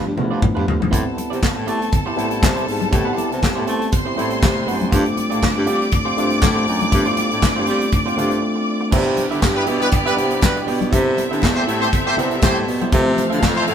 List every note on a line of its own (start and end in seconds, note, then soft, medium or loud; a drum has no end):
0.00 0.16 F3 loud
0.00 0.10 G3 medium
0.00 0.17 A3 medium
0.00 0.18 B3 medium
0.00 0.18 D4 loud
0.00 0.94 G4 medium
0.06 0.16 G2 medium
0.06 muted clean electric guitar stroke soft
0.16 0.29 E2 medium
0.16 0.63 F3 medium
0.16 0.64 A3 medium
0.16 0.64 B3 medium
0.16 0.24 D4 medium
0.16 muted clean electric guitar stroke soft
0.16 high tom medium
0.16 muted conga soft
0.16 low conga medium
0.24 0.67 E4 medium
0.31 0.41 F2 medium
0.31 0.40 G3 medium
0.31 0.41 D4 medium
0.31 0.41 F4 medium
0.31 0.42 D5 medium
0.42 muted clean electric guitar stroke soft
0.42 kick loud
0.42 mid tom medium
0.42 high conga medium
0.55 0.66 G2 medium
0.55 0.65 G3 medium
0.55 0.65 D4 medium
0.55 0.66 F4 medium
0.55 0.66 B4 medium
0.55 mid tom medium
0.66 0.80 G2 medium
0.66 muted clean electric guitar stroke soft
0.66 floor tom medium
0.66 high conga soft
0.80 0.91 G#2 medium
0.80 muted clean electric guitar stroke soft
0.80 floor tom medium
0.80 high conga medium
0.91 1.04 A2 loud
0.91 1.54 G3 medium
0.91 1.55 B3 medium
0.91 1.10 C4 medium
0.91 1.55 C4 medium
0.91 1.05 E4 medium
0.91 1.55 E4 medium
0.91 1.04 G4 medium
0.91 3.88 A4 medium
0.91 1.03 C5 medium
0.91 3.88 A5 medium
0.91 kick loud
0.91 closed hi-hat loud
0.91 muted conga medium
1.05 muted clean electric guitar stroke soft
1.17 muted clean electric guitar stroke soft
1.17 closed hi-hat medium
1.17 muted conga medium
1.30 1.41 C3 medium
1.30 1.44 C4 medium
1.30 1.44 E4 medium
1.30 1.44 G4 medium
1.30 1.43 D5 medium
1.30 closed hi-hat soft
1.43 kick loud
1.43 snare medium
1.43 clap medium
1.43 high conga medium
1.56 1.66 A2 medium
1.56 muted clean electric guitar stroke soft
1.66 1.89 A3 loud
1.66 1.85 C4 medium
1.66 1.80 E4 medium
1.66 1.80 G4 medium
1.66 1.80 D5 medium
1.66 closed hi-hat medium
1.81 muted clean electric guitar stroke soft
1.81 closed hi-hat soft
1.92 muted clean electric guitar stroke soft
1.92 kick loud
1.92 closed hi-hat medium
1.92 low conga medium
2.06 2.15 C4 medium
2.06 2.16 E4 medium
2.06 2.16 G4 medium
2.06 2.17 C5 medium
2.16 2.39 A2 medium
2.16 2.63 G3 medium
2.16 2.63 B3 medium
2.16 2.32 C4 medium
2.16 2.64 C4 medium
2.16 2.30 E4 medium
2.16 2.64 E4 medium
2.16 2.30 G4 medium
2.16 2.29 C5 medium
2.16 closed hi-hat medium
2.16 muted conga soft
2.31 muted clean electric guitar stroke soft
2.31 closed hi-hat soft
2.42 2.64 C3 medium
2.42 muted clean electric guitar stroke soft
2.42 kick loud
2.42 snare loud
2.42 clap loud
2.42 high conga medium
2.56 2.65 C4 medium
2.56 2.66 E4 medium
2.56 2.66 G4 medium
2.56 2.66 C5 medium
2.56 closed hi-hat soft
2.67 2.89 G#2 medium
2.67 muted clean electric guitar stroke soft
2.67 open hi-hat medium
2.81 muted clean electric guitar stroke soft
2.81 closed hi-hat soft
2.81 high conga medium
2.91 3.05 A2 loud
2.91 3.55 G3 medium
2.91 3.55 B3 medium
2.91 3.55 C4 medium
2.91 3.56 G4 medium
2.91 muted clean electric guitar stroke medium
2.91 kick loud
2.91 closed hi-hat medium
2.91 muted conga medium
3.05 3.15 C4 medium
3.05 3.16 E4 medium
3.05 3.16 G4 medium
3.05 3.17 C5 medium
3.16 3.32 C4 medium
3.16 3.31 E4 medium
3.16 3.30 G4 medium
3.16 3.31 D5 medium
3.16 closed hi-hat medium
3.16 muted conga medium
3.31 3.41 C3 medium
3.31 muted clean electric guitar stroke soft
3.31 closed hi-hat soft
3.42 muted clean electric guitar stroke soft
3.42 kick medium
3.42 snare medium
3.42 clap medium
3.42 high conga medium
3.55 3.66 A2 loud
3.55 3.65 C4 medium
3.55 3.66 E4 medium
3.55 3.67 G4 medium
3.55 3.67 C5 medium
3.67 3.89 A3 loud
3.67 3.85 C4 medium
3.67 3.81 E4 medium
3.67 3.81 G4 medium
3.67 3.80 C5 loud
3.67 closed hi-hat medium
3.81 muted clean electric guitar stroke soft
3.81 closed hi-hat soft
3.92 4.90 C5 medium
3.92 4.90 C6 medium
3.92 muted clean electric guitar stroke soft
3.92 kick loud
3.92 closed hi-hat medium
4.05 4.15 C4 medium
4.05 4.15 E4 medium
4.05 4.16 G4 medium
4.05 4.16 C5 medium
4.16 4.39 A2 medium
4.16 4.64 G3 medium
4.16 4.64 A3 medium
4.16 4.35 C4 medium
4.16 4.64 C4 medium
4.16 4.30 E4 medium
4.16 4.64 E4 medium
4.16 4.30 G4 loud
4.16 4.29 C5 medium
4.16 closed hi-hat medium
4.16 muted conga soft
4.31 muted clean electric guitar stroke soft
4.31 closed hi-hat soft
4.43 4.64 C3 medium
4.43 kick loud
4.43 snare loud
4.43 clap loud
4.43 high conga medium
4.56 muted clean electric guitar stroke soft
4.67 4.89 F#2 medium
4.67 4.88 C4 medium
4.67 4.81 E4 medium
4.67 4.80 G4 medium
4.67 4.80 C5 medium
4.67 open hi-hat medium
4.81 muted clean electric guitar stroke medium
4.81 closed hi-hat soft
4.81 high conga medium
4.91 5.04 G2 loud
4.91 5.55 A3 medium
4.91 4.99 B3 medium
4.91 5.10 C4 medium
4.91 5.56 D4 medium
4.91 5.05 F4 medium
4.91 5.56 F4 medium
4.91 5.05 G4 medium
4.91 5.05 C5 loud
4.91 8.88 D5 medium
4.91 8.88 D6 loud
4.91 kick loud
4.91 closed hi-hat medium
4.91 muted conga medium
4.99 5.58 C4 medium
5.06 muted clean electric guitar stroke soft
5.06 closed hi-hat soft
5.16 muted clean electric guitar stroke soft
5.16 closed hi-hat medium
5.16 muted conga medium
5.30 5.42 A2 medium
5.30 5.44 C4 medium
5.30 5.44 F4 medium
5.30 5.43 G4 medium
5.30 5.43 D5 medium
5.30 closed hi-hat soft
5.42 kick medium
5.42 snare medium
5.42 clap medium
5.42 tambourine loud
5.42 high conga medium
5.55 5.66 G2 loud
5.55 muted clean electric guitar stroke soft
5.66 5.89 G3 loud
5.66 5.85 C4 medium
5.66 5.80 F4 medium
5.66 5.80 G4 medium
5.66 5.80 D5 loud
5.66 closed hi-hat medium
5.81 muted clean electric guitar stroke soft
5.81 closed hi-hat soft
5.92 muted clean electric guitar stroke soft
5.92 kick loud
5.92 closed hi-hat medium
5.92 low conga medium
6.05 6.15 C4 medium
6.05 6.16 F4 medium
6.05 6.16 G4 medium
6.05 6.17 C5 medium
6.16 6.39 G2 medium
6.16 6.64 A3 medium
6.16 6.32 C4 medium
6.16 6.64 C4 medium
6.16 6.64 D4 medium
6.16 6.31 F4 medium
6.16 6.65 F4 medium
6.16 6.30 G4 medium
6.16 6.30 C5 medium
6.16 closed hi-hat medium
6.16 muted conga soft
6.30 muted clean electric guitar stroke soft
6.30 closed hi-hat soft
6.41 6.64 A2 loud
6.41 muted clean electric guitar stroke soft
6.41 kick loud
6.41 snare loud
6.41 clap medium
6.41 tambourine medium
6.41 high conga medium
6.55 6.66 C4 medium
6.55 6.66 F4 medium
6.55 6.66 G4 medium
6.55 6.67 C5 medium
6.67 6.89 F#2 medium
6.67 muted clean electric guitar stroke soft
6.67 open hi-hat medium
6.81 muted clean electric guitar stroke soft
6.81 closed hi-hat soft
6.81 high conga medium
6.92 7.04 G2 loud
6.92 7.55 A3 medium
6.92 6.99 B3 medium
6.92 7.56 D4 medium
6.92 7.56 E4 medium
6.92 muted clean electric guitar stroke soft
6.92 kick loud
6.92 closed hi-hat medium
6.92 muted conga medium
6.99 7.58 C4 medium
7.06 7.16 C4 medium
7.06 7.17 F4 medium
7.06 7.17 G4 medium
7.06 7.19 C5 medium
7.06 closed hi-hat soft
7.17 7.33 C4 medium
7.17 7.31 F4 medium
7.17 7.31 G4 medium
7.17 7.31 D5 medium
7.17 closed hi-hat medium
7.17 muted conga medium
7.31 7.41 A2 medium
7.31 muted clean electric guitar stroke medium
7.31 closed hi-hat soft
7.42 muted clean electric guitar stroke soft
7.42 kick loud
7.42 snare loud
7.42 clap medium
7.42 tambourine loud
7.42 high conga medium
7.56 7.66 G2 medium
7.56 7.65 C4 medium
7.56 7.66 F4 medium
7.56 7.66 G4 medium
7.56 7.66 C5 medium
7.66 7.89 G3 loud
7.66 7.85 C4 loud
7.66 7.81 F4 medium
7.66 7.80 G4 medium
7.66 7.79 C5 loud
7.66 closed hi-hat medium
7.80 muted clean electric guitar stroke medium
7.80 closed hi-hat soft
7.91 muted clean electric guitar stroke soft
7.91 kick loud
7.91 closed hi-hat medium
8.06 8.15 C4 medium
8.06 8.16 F4 medium
8.06 8.16 G4 medium
8.06 8.17 C5 medium
8.06 closed hi-hat soft
8.16 8.39 G2 medium
8.16 8.64 A3 medium
8.16 8.35 C4 medium
8.16 8.64 C4 medium
8.16 8.64 D4 medium
8.16 8.30 F4 medium
8.16 8.64 F4 loud
8.16 8.30 G4 medium
8.16 8.29 C5 loud
8.16 closed hi-hat medium
8.16 low conga medium
8.30 muted clean electric guitar stroke soft
8.30 closed hi-hat soft
8.42 muted clean electric guitar stroke soft
8.56 muted clean electric guitar stroke soft
8.81 muted clean electric guitar stroke soft
8.91 9.26 C3 loud
8.91 9.55 G3 medium
8.91 10.88 B3 medium
8.91 9.56 B3 medium
8.91 9.10 D4 medium
8.91 9.56 D4 medium
8.91 9.00 D#4 medium
8.91 10.88 G4 medium
8.91 9.05 G4 medium
8.91 9.05 B4 medium
8.91 10.88 D5 loud
8.91 9.04 E5 loud
8.91 kick loud
8.91 crash loud
8.91 muted conga medium
9.00 9.59 E4 medium
9.06 muted clean electric guitar stroke soft
9.16 muted clean electric guitar stroke soft
9.16 closed hi-hat medium
9.16 muted conga medium
9.31 9.41 D3 medium
9.31 9.44 D4 medium
9.31 9.44 G4 medium
9.31 9.44 B4 medium
9.31 9.44 E5 medium
9.31 closed hi-hat soft
9.42 9.64 G2 loud
9.42 kick medium
9.42 snare medium
9.42 clap medium
9.42 tambourine loud
9.42 high conga medium
9.55 9.63 G3 medium
9.55 9.63 E4 loud
9.55 9.63 B4 loud
9.55 muted clean electric guitar stroke soft
9.67 9.89 B2 loud
9.67 9.85 D4 medium
9.67 9.80 G4 medium
9.67 9.80 B4 medium
9.67 9.79 E5 medium
9.67 closed hi-hat medium
9.80 9.88 G3 loud
9.80 9.88 E4 loud
9.80 9.88 B4 loud
9.80 muted clean electric guitar stroke soft
9.80 closed hi-hat soft
9.92 muted clean electric guitar stroke soft
9.92 kick loud
9.92 closed hi-hat medium
10.06 10.13 G3 loud
10.06 10.15 D4 medium
10.06 10.13 E4 medium
10.06 10.16 G4 medium
10.06 10.13 B4 loud
10.06 10.17 B4 medium
10.06 10.18 E5 medium
10.06 closed hi-hat soft
10.16 10.39 C3 medium
10.16 10.63 G3 medium
10.16 10.64 B3 medium
10.16 10.32 D4 medium
10.16 10.64 D4 medium
10.16 10.64 E4 medium
10.16 10.31 G4 medium
10.16 10.31 B4 medium
10.16 10.31 G5 medium
10.16 closed hi-hat medium
10.16 muted conga soft
10.31 muted clean electric guitar stroke soft
10.31 closed hi-hat soft
10.41 10.64 B2 medium
10.41 10.58 G3 medium
10.41 10.58 E4 medium
10.41 10.58 B4 loud
10.41 kick loud
10.41 snare loud
10.41 clap loud
10.41 tambourine medium
10.41 high conga medium
10.56 muted clean electric guitar stroke medium
10.56 closed hi-hat soft
10.67 10.89 B2 loud
10.67 10.86 D4 medium
10.67 10.81 G4 medium
10.67 10.80 B4 medium
10.67 10.80 G5 medium
10.67 open hi-hat medium
10.81 muted clean electric guitar stroke medium
10.81 closed hi-hat soft
10.81 high conga medium
10.91 11.26 C3 loud
10.91 11.55 G3 medium
10.91 11.55 B3 medium
10.91 11.55 C4 medium
10.91 12.88 C4 medium
10.91 10.99 D4 medium
10.91 11.10 E4 medium
10.91 11.06 G4 medium
10.91 12.88 A4 medium
10.91 11.05 C5 medium
10.91 11.04 E5 medium
10.91 12.88 E5 loud
10.91 kick loud
10.91 closed hi-hat loud
10.91 muted conga medium
10.99 11.58 E4 medium
11.06 muted clean electric guitar stroke soft
11.17 muted clean electric guitar stroke soft
11.17 closed hi-hat medium
11.17 muted conga medium
11.31 11.41 D3 medium
11.31 11.44 E4 medium
11.31 11.44 G4 medium
11.31 11.44 C5 medium
11.31 11.44 E5 medium
11.31 closed hi-hat soft
11.42 11.64 E2 loud
11.42 kick medium
11.42 snare loud
11.42 clap medium
11.42 tambourine loud
11.42 high conga medium
11.56 11.63 A3 medium
11.56 11.63 G4 loud
11.56 11.63 C5 loud
11.56 muted clean electric guitar stroke medium
11.67 11.89 A2 loud
11.67 11.86 E4 medium
11.67 11.82 G4 loud
11.67 11.81 C5 medium
11.67 11.80 E5 medium
11.67 closed hi-hat medium
11.81 11.88 A3 loud
11.81 11.88 G4 loud
11.81 11.89 C5 loud
11.81 muted clean electric guitar stroke soft
11.81 closed hi-hat soft
11.93 kick loud
11.93 closed hi-hat medium
12.06 12.13 A3 loud
12.06 12.13 G4 loud
12.06 12.13 C5 loud
12.06 muted clean electric guitar stroke medium
12.17 12.39 C3 medium
12.17 12.64 G3 medium
12.17 12.64 B3 medium
12.17 12.64 C4 medium
12.17 12.36 E4 medium
12.17 12.32 G4 medium
12.17 12.65 G4 medium
12.17 12.32 C5 medium
12.17 12.31 E5 medium
12.17 closed hi-hat medium
12.17 low conga medium
12.31 muted clean electric guitar stroke soft
12.31 closed hi-hat soft
12.42 12.64 A2 loud
12.42 12.58 A3 medium
12.42 12.61 E4 medium
12.42 12.59 G4 loud
12.42 12.57 G4 medium
12.42 12.58 C5 loud
12.42 12.56 C5 medium
12.42 12.56 E5 medium
12.42 kick loud
12.42 snare loud
12.42 clap loud
12.42 tambourine medium
12.42 high conga loud
12.57 muted clean electric guitar stroke soft
12.67 12.89 B2 medium
12.67 muted clean electric guitar stroke medium
12.67 open hi-hat medium
12.81 12.92 E4 medium
12.81 12.93 G4 medium
12.81 12.93 C5 medium
12.81 12.93 G5 medium
12.81 closed hi-hat soft
12.81 high conga medium
12.91 13.26 C3 loud
12.91 13.56 E3 medium
12.91 13.55 A3 medium
12.91 13.74 C4 medium
12.91 13.11 C4 medium
12.91 13.56 C4 medium
12.91 13.06 F4 medium
12.91 13.74 A4 medium
12.91 13.06 A4 medium
12.91 13.05 E5 medium
12.91 13.74 F5 loud
12.91 kick loud
12.91 closed hi-hat medium
12.91 muted conga medium
12.98 13.58 F3 medium
13.06 muted clean electric guitar stroke soft
13.17 muted clean electric guitar stroke soft
13.17 closed hi-hat medium
13.17 muted conga medium
13.30 13.44 D3 loud
13.30 13.44 C4 medium
13.30 13.44 F4 medium
13.30 13.43 A4 medium
13.30 13.43 E5 medium
13.30 closed hi-hat soft
13.43 13.64 F2 loud
13.43 kick medium
13.43 snare loud
13.43 clap medium
13.43 tambourine loud
13.43 high conga medium
13.56 13.63 A3 loud
13.56 13.63 F4 medium
13.56 13.63 C5 loud
13.56 muted clean electric guitar stroke soft
13.67 13.74 A2 loud
13.67 13.74 C4 medium
13.67 13.74 F4 medium
13.67 13.74 A4 loud
13.67 13.74 E5 medium
13.67 closed hi-hat medium